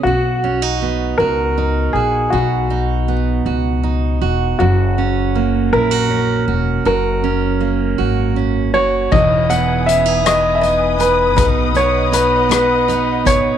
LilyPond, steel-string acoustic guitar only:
\new Staff \with { instrumentName = "Steel-string acoustic guitar" } { \time 6/8 \key b \major \tempo 4. = 53 fis'8 cis'16 dis'16 b8 fis'8 dis'8 fis'8 | <b, fis'>8 dis'8 b8 fis'8 dis'8 fis'8 | <fis, fis'>8 cis'8 ais8 e'16 fis'16 cis'8 fis'8 | <fis, fis'>8 cis'8 ais8 fis'8 cis'8 fis'8 |
<e dis'>8 b8 cis'16 dis'16 b8 dis'8 b8 | <b, dis'>8 b8 dis'8 b8 dis'8 b8 | }